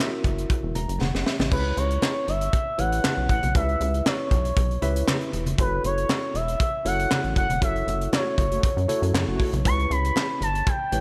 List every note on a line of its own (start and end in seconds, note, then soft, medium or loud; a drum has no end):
0.00 0.79 E4 medium
0.00 0.80 F#4 medium
0.00 0.80 A#4 medium
0.00 0.80 E5 medium
0.00 snare loud
0.00 clap medium
0.24 0.46 F#1 medium
0.24 kick loud
0.24 closed hi-hat medium
0.24 low conga medium
0.38 closed hi-hat soft
0.50 kick loud
0.50 closed hi-hat medium
0.63 0.73 E1 medium
0.75 0.86 E1 medium
0.75 0.99 A#5 medium
0.75 closed hi-hat medium
0.75 muted conga soft
0.89 0.99 F#1 medium
0.89 closed hi-hat medium
1.00 1.12 E1 medium
1.00 1.24 F#5 medium
1.00 snare medium
1.00 high conga medium
1.14 1.24 F#1 medium
1.14 snare medium
1.26 1.50 E5 medium
1.26 snare medium
1.40 1.50 A1 medium
1.40 snare medium
1.40 high conga medium
1.51 1.73 C#2 loud
1.51 2.32 E4 medium
1.51 2.32 G4 medium
1.51 2.32 B4 medium
1.51 1.79 B4 loud
1.51 2.32 C#5 medium
1.51 kick loud
1.51 crash loud
1.51 muted conga soft
1.77 1.98 C#2 loud
1.77 2.30 C#5 loud
1.77 closed hi-hat medium
1.77 muted conga medium
1.90 closed hi-hat soft
2.02 snare loud
2.02 clap medium
2.02 high conga medium
2.28 2.49 G1 medium
2.28 2.81 E5 loud
2.28 closed hi-hat medium
2.41 closed hi-hat medium
2.53 kick loud
2.53 closed hi-hat medium
2.78 3.00 A1 medium
2.78 3.39 E4 medium
2.78 3.39 G4 medium
2.78 3.39 B4 medium
2.78 3.40 C#5 medium
2.78 3.30 F#5 loud
2.78 closed hi-hat medium
2.78 muted conga medium
2.92 closed hi-hat medium
3.04 snare loud
3.04 clap loud
3.04 high conga medium
3.17 3.27 B1 medium
3.29 3.41 A1 loud
3.29 3.54 F#5 loud
3.29 kick medium
3.29 closed hi-hat medium
3.43 3.53 B1 medium
3.43 closed hi-hat medium
3.43 high conga medium
3.55 3.76 C#2 loud
3.55 4.35 E4 medium
3.55 4.35 G4 medium
3.55 4.36 B4 medium
3.55 3.62 D5 medium
3.55 4.08 E5 loud
3.55 kick loud
3.55 closed hi-hat loud
3.55 muted conga medium
3.62 4.39 E5 medium
3.69 closed hi-hat soft
3.80 4.02 C#2 loud
3.80 closed hi-hat medium
3.80 muted conga medium
3.94 closed hi-hat soft
4.06 5.33 C#5 loud
4.06 snare loud
4.06 clap medium
4.06 high conga medium
4.31 4.52 B1 loud
4.31 kick loud
4.31 closed hi-hat medium
4.31 low conga medium
4.45 closed hi-hat medium
4.57 4.78 B1 medium
4.57 kick loud
4.57 closed hi-hat loud
4.71 closed hi-hat soft
4.82 5.03 C#2 medium
4.82 5.43 E4 medium
4.82 5.43 G4 medium
4.82 5.43 B4 medium
4.82 5.43 E5 medium
4.82 closed hi-hat medium
4.82 muted conga medium
4.96 closed hi-hat medium
5.08 snare loud
5.08 clap loud
5.08 high conga medium
5.21 closed hi-hat soft
5.33 5.54 E1 medium
5.33 closed hi-hat medium
5.46 closed hi-hat medium
5.46 high conga medium
5.58 5.80 F#1 loud
5.58 6.39 E4 medium
5.58 6.39 F#4 medium
5.58 6.39 A4 medium
5.58 5.83 B4 loud
5.58 6.39 C#5 medium
5.58 kick loud
5.58 closed hi-hat loud
5.58 muted conga soft
5.84 6.05 F#1 loud
5.84 6.37 C#5 loud
5.84 closed hi-hat medium
5.84 muted conga medium
5.98 closed hi-hat medium
6.09 snare loud
6.09 clap medium
6.09 high conga medium
6.35 6.56 E1 loud
6.35 6.86 E5 loud
6.35 closed hi-hat medium
6.35 muted conga soft
6.48 closed hi-hat medium
6.60 kick loud
6.60 closed hi-hat loud
6.85 7.06 F#1 loud
6.85 7.46 E4 medium
6.85 7.46 F#4 medium
6.85 7.46 A4 medium
6.85 7.46 C#5 medium
6.85 7.33 F#5 loud
6.85 closed hi-hat medium
6.85 muted conga medium
6.99 closed hi-hat medium
7.11 snare loud
7.11 clap loud
7.11 high conga medium
7.24 7.34 A1 medium
7.24 closed hi-hat soft
7.36 7.47 F#1 loud
7.36 7.61 F#5 loud
7.36 kick loud
7.36 closed hi-hat medium
7.50 7.60 E1 medium
7.50 closed hi-hat medium
7.50 high conga medium
7.61 7.83 F#1 loud
7.61 8.42 E4 medium
7.61 8.42 F#4 medium
7.61 8.42 A4 medium
7.61 8.43 C#5 medium
7.61 8.10 E5 loud
7.61 kick loud
7.61 closed hi-hat loud
7.61 muted conga medium
7.76 closed hi-hat soft
7.87 8.08 F#1 loud
7.87 closed hi-hat medium
7.87 muted conga medium
8.01 closed hi-hat soft
8.12 8.24 A3 medium
8.12 8.24 F#4 medium
8.12 8.24 C#5 loud
8.12 9.36 C#5 medium
8.12 snare loud
8.12 clap medium
8.12 high conga medium
8.38 8.59 F#1 medium
8.38 kick medium
8.38 closed hi-hat medium
8.38 low conga medium
8.51 8.62 A3 medium
8.51 8.62 F#4 medium
8.51 8.62 C#5 medium
8.51 closed hi-hat medium
8.63 kick loud
8.63 closed hi-hat medium
8.63 low conga medium
8.77 8.87 F#2 loud
8.77 closed hi-hat soft
8.88 9.01 A3 medium
8.88 9.49 E4 medium
8.88 9.49 F#4 medium
8.88 9.00 F#4 medium
8.88 9.50 A4 medium
8.88 9.50 C#5 loud
8.88 9.00 C#5 loud
8.88 closed hi-hat medium
8.88 muted conga soft
9.02 9.12 F#2 loud
9.02 closed hi-hat medium
9.14 9.25 F#2 loud
9.14 snare loud
9.14 clap loud
9.14 high conga medium
9.28 9.38 F#1 medium
9.28 9.50 A3 loud
9.28 9.50 F#4 loud
9.28 9.50 C#5 loud
9.40 kick medium
9.40 open hi-hat medium
9.53 9.67 B1 medium
9.53 closed hi-hat medium
9.53 high conga medium
9.65 9.86 C#2 loud
9.65 10.45 E4 medium
9.65 10.46 G4 medium
9.65 10.46 B4 medium
9.65 10.46 C#5 medium
9.65 9.93 C#6 loud
9.65 kick loud
9.65 closed hi-hat loud
9.65 muted conga soft
9.79 closed hi-hat soft
9.90 10.12 C#2 loud
9.90 10.42 B5 loud
9.90 closed hi-hat medium
9.90 muted conga medium
10.04 closed hi-hat medium
10.16 snare loud
10.16 clap medium
10.16 high conga medium
10.41 10.62 G1 loud
10.41 10.70 A5 loud
10.41 closed hi-hat medium
10.41 muted conga soft
10.55 closed hi-hat medium
10.66 11.01 G5 loud
10.66 kick loud
10.66 closed hi-hat medium
10.92 11.01 A1 medium
10.92 11.01 E4 medium
10.92 11.01 G4 medium
10.92 11.01 B4 medium
10.92 11.01 C#5 medium
10.92 closed hi-hat medium
10.92 muted conga medium